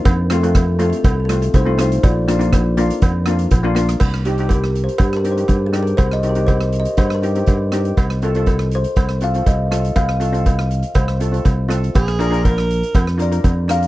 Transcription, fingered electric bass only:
X:1
M:4/4
L:1/8
Q:1/4=121
K:Cm
V:1 name="Fingered electric bass" clef=bass
F,,4 C,,2 C,,2 | B,,,4 F,,2 B,,,2 | C,,4 G,,2 G,,2 | C,,4 G,,2 G,,2 |
C,,4 C,,2 C,,2 | C,,4 C,,2 C,,2 | B,,,4 F,,2 F,,2 |]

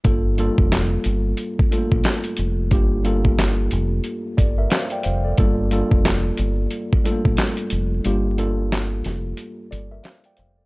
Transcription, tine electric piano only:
X:1
M:4/4
L:1/16
Q:"Swing 16ths" 1/4=90
K:Gm
V:1 name="Tine electric piano"
z16 | z8 z2 [Ad] [B=e] [cf] [dg] [cf] [Ad]- | [Ad] z12 z3 | z8 z2 [Ad] [B=e] [cf] [dg] [cf] [Ad] |]
V:2 name="Tine electric piano"
[G,,G,B,FA]2 [G,,G,B,FA]6- [G,,G,B,FA] z [G,,G,A,B,FA]6 | [G,,G,B,FG]2 [G,,G,B,FA]6- [G,,G,B,FA] z6 z | [G,,G,B,FA]2 [G,,G,B,FA]6- [G,,G,B,FA] z [G,,G,A,B,FA]6 | [G,,G,B,FG]2 [G,,G,B,FA]6- [G,,G,B,FA] z6 z |]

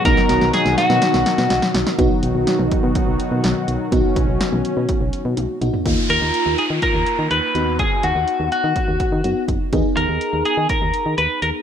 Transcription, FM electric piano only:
X:1
M:4/4
L:1/8
Q:1/4=124
K:Cblyd
V:1 name="FM electric piano"
[=B,^D^F]8 | [=B,^D^F]8 | [=B,^D^F]6- [B,DF] [B,DF] | [B,EF]6- [B,EF] [=B,^D^F]- |
[=B,^D^F]6 [B,DF]2 | [CEA]8 |]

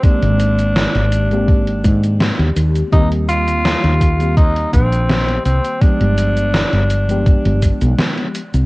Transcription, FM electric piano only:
X:1
M:4/4
L:1/16
Q:1/4=83
K:Gphr
V:1 name="FM electric piano"
[E,A,B,CG] z6 [E,A,B,CG]8- [E,A,B,CG] | [E,G,B,CG]6- [E,G,B,CG] [E,G,B,CG]8- [E,G,B,CG] | [F,A,=B,DG] z6 [F,A,B,DG]6- [F,A,B,DG] z2 |]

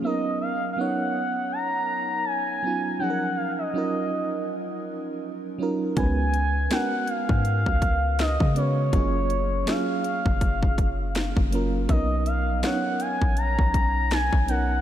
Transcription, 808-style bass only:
X:1
M:4/4
L:1/16
Q:"Swing 16ths" 1/4=81
K:Blyd
V:1 name="808-style bass" clef=bass
z16 | z16 | C,,4 z3 G,,2 C,,4 C,3 | F,,,4 z3 F,,,6 F,,,3 |
B,,,3 A,,, z3 A,,,2 B,,,4 B,,,3 |]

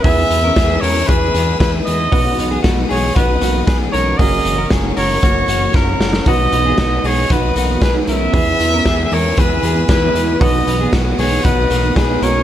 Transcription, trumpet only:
X:1
M:4/4
L:1/8
Q:1/4=116
K:B
V:1 name="Trumpet"
e3 c B2 B d- | d2 z c B2 B c | d2 z c3 A2 | d3 c B2 B e- |
e3 c B2 B2 | d2 z c B2 B c |]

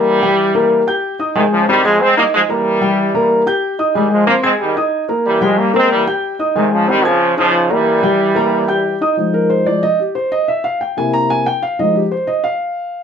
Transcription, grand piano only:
X:1
M:4/4
L:1/8
Q:1/4=184
K:Fm
V:1 name="Grand piano"
[B,Bb] [G,Gg]2 [B,Bb]2 [Ggg']2 [Eee'] | [A,Aa]2 [Ccc'] [Aaa']2 [Eee']2 [B,Bb]- | [B,Bb] [G,Gg]2 [B,Bb]2 [Ggg']2 [Eee'] | [A,Aa]2 [Ccc'] [Aaa']2 [Eee']2 [B,Bb]- |
[B,Bb] [G,Gg]2 [B,Bb]2 [Ggg']2 [Eee'] | [A,Aa]2 [Ccc'] [Aaa']2 [Eee']2 [B,Bb]- | [B,Bb] [G,Gg]2 [B,Bb]2 [Ggg']2 [Eee'] | z B c =d e G c e |
=e f g a b a g f | e G c e f4 |]
V:2 name="Grand piano" clef=bass
z8 | z8 | z8 | z8 |
z8 | z8 | z8 | [F,A,E]3 [F,A,E] z4 |
z3 [C,B,=E]3 z2 | [F,A,E] z6 z |]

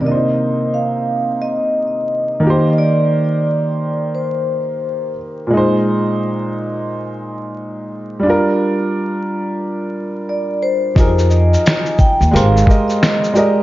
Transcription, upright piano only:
X:1
M:4/4
L:1/8
Q:"Swing 16ths" 1/4=88
K:Eb
V:1 name="Upright piano"
[C,B,DEc]6- [C,B,DEc] [E,B,Gc]- | [E,B,Gc]6- [E,B,Gc] z | [B,,A,Ec]8 | [G,DFB]8 |
[F,EGAB]3 z [A,GBc] [A,GBe] z [A,GBe] |]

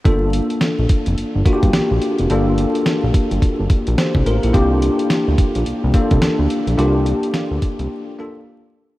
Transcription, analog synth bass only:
X:1
M:4/4
L:1/16
Q:"Swing 16ths" 1/4=107
K:Gm
V:1 name="Analog synth bass" clef=bass
G,,,3 z2 B,,, z F,,, z G,,, z G,,, B,,, B,,, z F,,, | G,,,3 z2 B,,, z G,,, z G,,, z B,,, z C,, A,,, B,,, | C,,3 z2 D,, z B,,, z C,, z C,, z D,, z B,,, | C,,3 z2 D,, z C,, z8 |]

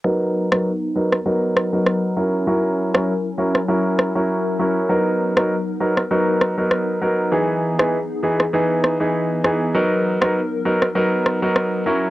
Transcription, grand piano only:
X:1
M:4/4
L:1/16
Q:"Swing 16ths" 1/4=99
K:B
V:1 name="Grand piano"
[F,B,DA]3 [F,B,DA] z2 [F,B,DA] z [F,B,DA]3 [F,B,DA]3 [F,CEA]2 | [F,CEA]3 [F,CEA] z2 [F,CEA] z [F,CEA]3 [F,CEA]3 [F,CEA]2 | [F,B,DA]3 [F,B,DA] z2 [F,B,DA] z [F,B,DA]3 [F,B,DA]3 [F,B,DA]2 | [E,B,DG]3 [E,B,DG] z2 [E,B,DG] z [E,B,DG]3 [E,B,DG]3 [E,B,DG]2 |
[F,B,DA]3 [F,B,DA] z2 [F,B,DA] z [F,B,DA]3 [F,B,DA]3 [F,CEA]2 |]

